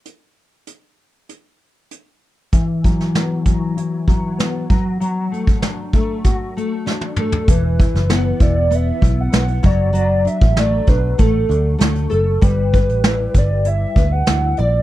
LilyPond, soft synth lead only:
\new Staff \with { instrumentName = "Soft synth lead" } { \time 4/4 \key e \minor \tempo 4 = 97 r1 | r1 | r2. r8 a'8 | b'4. d''8 e''8. fis''8. d''8 |
d''8 e''8 d''8 b'8 a'4 r8 a'8 | b'4. d''8 e''8. fis''8. d''8 | }